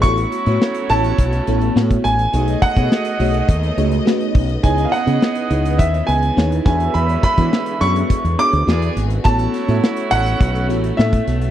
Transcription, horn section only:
\new Staff \with { instrumentName = "Horn section" } { \time 4/4 \key a \lydian \tempo 4 = 104 <fis e' cis''>2.~ <fis e' cis''>8 r8 | <a gis' dis''>2.~ <a gis' dis''>8 r8 | <b gis' dis''>2. r8 <cis' b' e''>8~ | <cis' b' e''>2~ <cis' b' e''>8 r8 <b gis' d''>8 r8 |
<fis e' cis''>2.~ <fis e' cis''>8 r8 | }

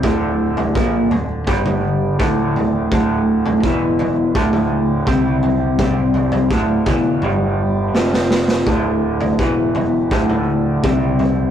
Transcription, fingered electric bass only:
\new Staff \with { instrumentName = "Fingered electric bass" } { \clef bass \time 4/4 \key d \dorian \tempo 4 = 83 d,,4 bes,,8 d,,8 g,,4 d,,4 | d,,4 e,,4 d,,4 c,4 | c,4 d,,8 e,,8 g,,4 f,,4 | d,,4 e,,4 d,,4 c,4 | }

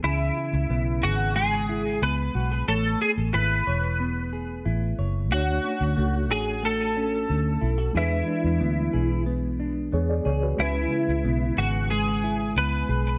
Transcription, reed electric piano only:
\new Staff \with { instrumentName = "Reed electric piano" } { \time 4/4 \key cis \phrygian \tempo 4 = 91 << { r1 | r1 | r1 | r2. <gis' cis''>16 <gis' d''>16 <gis' cis''>16 <fis' b'>16~ |
<fis' b'>16 r2. r8. | } \\ { r1 | r1 | <a d' fis' cis''>1 | <gis d' e' b'>1 |
<gis cis' e' b'>1 | } >> }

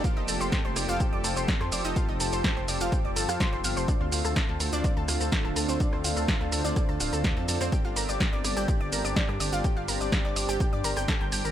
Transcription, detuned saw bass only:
\new Staff \with { instrumentName = "Detuned saw bass" } { \clef bass \time 4/4 \key d \minor \tempo 4 = 125 r16 f,,16 f,,16 f,,16 r16 f,,16 f,,16 f,,16 r16 f,,16 f,,16 f,,16 r16 f,16 f,,16 f,,16 | r16 f,,16 f,,16 f,,16 r16 f,,16 f,,16 f,,16 r16 f,,16 g,,16 f,16 r16 f,,16 g,,16 f,,16 | r16 d,16 d,16 d,16 r16 d,16 d,16 d,16 r16 d,16 d,16 d,16 r16 d,,16 d,16 d,16 | r16 d,16 d,16 d,16 r16 d,16 d,16 d,16 r16 d,16 d,,16 d,8 f,16 f,16 f,16 |
r16 g,,16 g,,16 g,,16 r16 g,,16 g,,16 g,,16 r16 g,,16 g,,16 g,,16 r16 g,16 g,,16 g,,16 | r16 g,,16 g,,16 g,,16 r16 g,,16 g,,16 g,,16 r16 g,16 g,,16 g,,16 r16 g,,16 g,,16 g,,16 | }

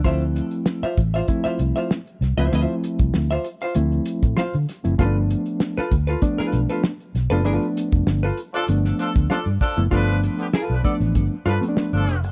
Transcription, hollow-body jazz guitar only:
\new Staff \with { instrumentName = "Hollow-body jazz guitar" } { \time 4/4 \key g \mixolydian \tempo 4 = 97 <f' c'' e''>16 r4 <f' c'' e''>16 r16 <f' c'' e''>16 r16 <f' c'' e''>16 r16 <f' c'' e''>16 r8. <f' c'' e''>16 | <f' c'' e''>16 r4 <f' c'' e''>16 r16 <f' c'' f''>16 r4 <f' c'' f''>16 r8. | <f' a' b'>16 r4 <f' a' b'>16 r16 <f' a' b'>16 r16 <f' a' b'>16 r16 <f' a' b'>16 r8. <f' a' b'>16 | <f' a' b'>16 r4 <f' a' b'>16 r16 <f' a' d''>16 r4 <f' a' d''>16 r8. |
<f' a' b'>16 r8. <f' a' b'>16 r4 r16 <f' a' b'>16 r4 r16 | }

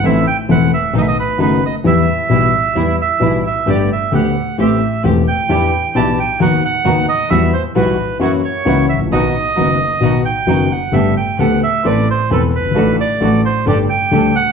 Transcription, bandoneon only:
\new Staff \with { instrumentName = "Bandoneon" } { \time 4/4 \key e \minor \tempo 4 = 132 e''8 g''8 fis''8 e''8 dis''32 e''32 dis''16 b'8 b'8 dis''8 | e''2~ e''8 e''4 e''8 | d''8 e''8 fis''4 e''4 r8 g''8~ | g''4 a''8 g''8 fis''8 fis''4 dis''8 |
e''8 c''8 b'4 cis''8 cis''4 e''8 | dis''2~ dis''8 g''4 fis''8 | e''8 g''8 fis''8 e''8 d''8 c''8 a'8 b'8~ | b'8 d''4 c''8 d''8 g''4 fis''8 | }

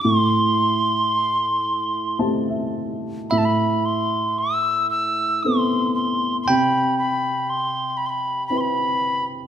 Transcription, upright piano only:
\new Staff \with { instrumentName = "Upright piano" } { \time 3/4 \key a \minor \tempo 4 = 57 << { r2 a''16 e''8. | r2. | r2. | } \\ { a,2 <a c' g'>4 | a,2 <b c' a'>4 | c2 <c' e' b'>4 | } >> }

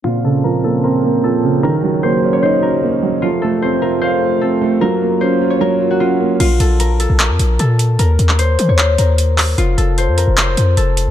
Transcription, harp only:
\new Staff \with { instrumentName = "Harp" } { \time 4/4 \key bes \minor \tempo 4 = 151 f'8 a'8 bes'8 a'8 bes'4 a'8 r8 | bes'4 c''8. des''16 c''8 bes'4. | f'8 a'8 c''8 bes'8 c''4 a'8 r8 | bes'4 c''8. des''16 bes'8. ges'16 f'4 |
f'8 a'8 bes'8 a'8 bes'4 a'8 r8 | bes'4 c''8. des''16 c''8 bes'4. | f'8 a'8 c''8 bes'8 c''4 a'8 r8 | }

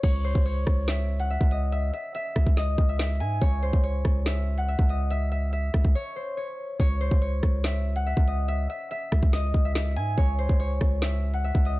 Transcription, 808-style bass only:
\new Staff \with { instrumentName = "808-style bass" } { \clef bass \time 4/4 \key cis \minor \tempo 4 = 142 cis,8. cis,8. cis,4.~ cis,16 cis,8.~ | cis,8 r4 cis,16 cis,8. cis,4 gis,8 | cis,8. cis,8. cis,4.~ cis,16 cis,8.~ | cis,4. cis,16 cis,16 r2 |
cis,8. cis,8. cis,4.~ cis,16 cis,8.~ | cis,8 r4 cis,16 cis,8. cis,4 gis,8 | cis,8. cis,8. cis,4.~ cis,16 cis,8. | }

